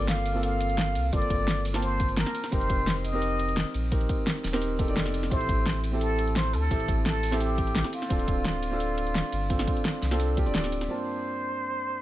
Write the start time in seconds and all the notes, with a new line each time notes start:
Already playing: G1 A#3 C4 F4 A4
0.08 F5, snare, closed hi-hat
0.26 closed hi-hat, ride, shaker
0.33 A#3 C4 F4 A4
0.43 F5, closed hi-hat
0.61 closed hi-hat, ride, shaker
0.70 closed hi-hat
0.78 snare, closed hi-hat
0.87 shaker
0.95 C2, closed hi-hat, ride, shaker
1.12 G1 A#3 C4 F4 A4 D5, kick, closed hi-hat
1.22 closed hi-hat, shaker
1.30 kick, closed hi-hat, ride, shaker
1.48 snare, closed hi-hat
1.65 open hi-hat, ride, shaker
1.73 A#3 C4 F4 A5, snare
1.82 C5, closed hi-hat
2.00 kick, closed hi-hat, ride, shaker
2.09 closed hi-hat
2.17 A#4, snare, closed hi-hat
2.26 snare, shaker
2.35 closed hi-hat, ride, shaker
2.44 snare
2.51 F1 C4 D#4 G4 A#4 C5, kick, closed hi-hat
2.61 closed hi-hat, shaker
2.70 kick, closed hi-hat, ride, shaker
2.87 snare, closed hi-hat
3.05 D#5, closed hi-hat, ride, shaker
3.13 C4 D#4 G4 A#4
3.22 closed hi-hat
3.39 closed hi-hat, ride, shaker
3.48 closed hi-hat
3.57 snare, closed hi-hat
3.66 shaker
3.74 A#1, closed hi-hat, ride, shaker
3.91 C4 D#4 G4 A#4, kick, closed hi-hat
4.01 closed hi-hat, shaker
4.09 kick, closed hi-hat, ride, shaker
4.27 snare, closed hi-hat
4.44 D#1, snare, open hi-hat, ride, shaker
4.53 C4 D#4 G4 A#4, snare
4.62 closed hi-hat
4.78 C4 D#4 G4 A4, kick, closed hi-hat, ride, shaker
4.88 F1 C4 D#4 G4 D5, closed hi-hat
4.97 snare, closed hi-hat
5.06 snare, shaker
5.14 closed hi-hat, ride, shaker
5.23 snare
5.30 A1 C4 E4 G4 A4 C5, kick, closed hi-hat
5.40 closed hi-hat, shaker
5.49 kick, closed hi-hat, ride, shaker
5.66 snare, closed hi-hat
5.84 closed hi-hat, ride, shaker
5.92 C4 E4 G4 A4
6.01 A4, closed hi-hat
6.19 closed hi-hat, ride, shaker
6.28 closed hi-hat
6.36 C5, snare, closed hi-hat
6.45 shaker
6.53 D2 A4, closed hi-hat, ride, shaker
6.70 A1 C4 E4 G4 A4, kick, closed hi-hat
6.80 closed hi-hat, shaker
6.88 kick, closed hi-hat, ride, shaker
7.06 A4, snare, closed hi-hat
7.23 open hi-hat, ride, shaker
7.31 C4 E4 G4 A4, snare
7.41 G4, closed hi-hat
7.58 kick, closed hi-hat, ride, shaker
7.67 closed hi-hat
7.75 snare, closed hi-hat
7.84 snare, shaker
7.93 F4, closed hi-hat, ride, shaker
8.02 snare
8.09 D1 C4 D4 F4 A4, kick, closed hi-hat
8.19 closed hi-hat, shaker
8.28 kick, closed hi-hat, ride, shaker
8.45 snare, closed hi-hat
8.63 closed hi-hat, ride, shaker
8.71 C4 D4 F4 A4
8.80 closed hi-hat
8.98 closed hi-hat, ride, shaker
9.07 closed hi-hat
9.15 snare, closed hi-hat
9.24 shaker
9.32 G1, closed hi-hat, ride, shaker
9.50 C4 D4 F4 A4, kick, closed hi-hat
9.59 snare, closed hi-hat, shaker
9.67 kick, closed hi-hat, ride, shaker
9.77 closed hi-hat
9.85 snare, closed hi-hat
9.94 shaker
10.02 C2, snare, open hi-hat, ride, shaker
10.11 C4 D4 F4 A4, snare, closed hi-hat
10.20 closed hi-hat
10.37 C4 D4 F4 G4, kick, closed hi-hat, ride, shaker
10.46 D1 C4 D4 F4 D5, closed hi-hat
10.55 snare, closed hi-hat
10.64 snare, shaker
10.72 closed hi-hat, ride, shaker
10.81 snare
10.88 G2 A#3 C4 D4 F4 C5 A5